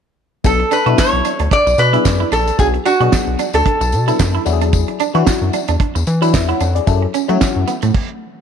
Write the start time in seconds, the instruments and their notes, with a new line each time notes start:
0.44 analog synth bass B1, fm electric piano F#3 B3 D4 A4, resonator guitar played with a steel bar A4, kick, closed hi-hat, tambourine
0.60 muted clean electric guitar stroke, closed hi-hat
0.71 clean electric guitar D4, resonator guitar played with a steel bar B4, closed hi-hat, tambourine
0.86 analog synth bass B2, fm electric piano F#3 B3 D4 E4, clean electric guitar F#4, closed hi-hat
0.98 resonator guitar played with a steel bar C#5, muted clean electric guitar stroke, kick, snare, clap, tambourine
1.13 analog synth bass B1
1.25 clean electric guitar D4, closed hi-hat, tambourine
1.39 analog synth bass D2, clean electric guitar D4, closed hi-hat
1.51 clean electric guitar D4, resonator guitar played with a steel bar D5, kick, closed hi-hat
1.66 analog synth bass B1, muted clean electric guitar stroke, tambourine
1.78 analog synth bass B2, resonator guitar played with a steel bar B4, closed hi-hat, tambourine
1.93 fm electric piano F#3 B3 D4 G#4, clean electric guitar E4, closed hi-hat
2.05 analog synth bass F#2, muted clean electric guitar stroke, kick, snare, clap, tambourine
2.20 clean electric guitar E4
2.32 analog synth bass A#1, clean electric guitar D4, resonator guitar played with a steel bar A4, closed hi-hat, tambourine
2.47 closed hi-hat, tambourine
2.58 analog synth bass B1, fm electric piano F#3 B3 D4 F#4, resonator guitar played with a steel bar G#4, kick, closed hi-hat, tambourine
2.74 muted clean electric guitar stroke, closed hi-hat
2.85 clean electric guitar D4, resonator guitar played with a steel bar F#4, closed hi-hat, tambourine
3.00 analog synth bass B2, fm electric piano F#3 B3 D4 G#4, clean electric guitar F#4, closed hi-hat
3.12 muted clean electric guitar stroke, kick, snare, clap, tambourine
3.27 analog synth bass B1
3.39 clean electric guitar D4, closed hi-hat, tambourine
3.53 analog synth bass D2, clean electric guitar D4, resonator guitar played with a steel bar A4, closed hi-hat, tambourine
3.66 clean electric guitar D4, kick, closed hi-hat
3.81 analog synth bass B1, muted clean electric guitar stroke, closed hi-hat, tambourine
3.92 analog synth bass B2, closed hi-hat, tambourine
4.07 fm electric piano F#3 B3 D4 A4, clean electric guitar E4, closed hi-hat, tambourine
4.19 analog synth bass F#2, kick, snare, clap, tambourine
4.35 clean electric guitar E4
4.45 analog synth bass E2, fm electric piano F#3 D4 E4 F#4, muted clean electric guitar stroke, closed hi-hat, tambourine
4.53 fm electric piano G#4
4.61 clean electric guitar D4, closed hi-hat, tambourine
4.73 kick, closed hi-hat, tambourine
4.88 muted clean electric guitar stroke, closed hi-hat
5.00 clean electric guitar D4, closed hi-hat, tambourine
5.14 analog synth bass E3, fm electric piano F#3 D4 E4 F#4, clean electric guitar F#4, closed hi-hat
5.27 muted clean electric guitar stroke, kick, snare, clap, tambourine
5.42 analog synth bass F#2
5.53 clean electric guitar D4, closed hi-hat, tambourine
5.68 analog synth bass E2, clean electric guitar D4, closed hi-hat, tambourine
5.80 clean electric guitar D4, kick, closed hi-hat
5.95 analog synth bass E2, muted clean electric guitar stroke, tambourine
6.07 analog synth bass E3, closed hi-hat, tambourine
6.21 fm electric piano F#3 D4 E4 B4, clean electric guitar E4, closed hi-hat, tambourine
6.33 analog synth bass E2, fm electric piano E5, muted clean electric guitar stroke, kick, snare, clap, tambourine
6.48 clean electric guitar E4, fm electric piano C#5 F#5, closed hi-hat
6.60 analog synth bass F2, clean electric guitar D4, closed hi-hat, tambourine
6.75 fm electric piano G#4 D5, closed hi-hat
6.87 analog synth bass F#2, fm electric piano F#3 C#4 E4 A4, kick, closed hi-hat, tambourine
7.02 muted clean electric guitar stroke
7.14 clean electric guitar C#4, closed hi-hat, tambourine
7.28 fm electric piano F#3 C#4 E4 F#4, analog synth bass F#3, clean electric guitar A3, closed hi-hat
7.41 muted clean electric guitar stroke, kick, snare, clap, tambourine
7.56 analog synth bass F#2
7.68 clean electric guitar B3, closed hi-hat, tambourine
7.82 analog synth bass A2, clean electric guitar A3, closed hi-hat, tambourine
7.94 kick, crash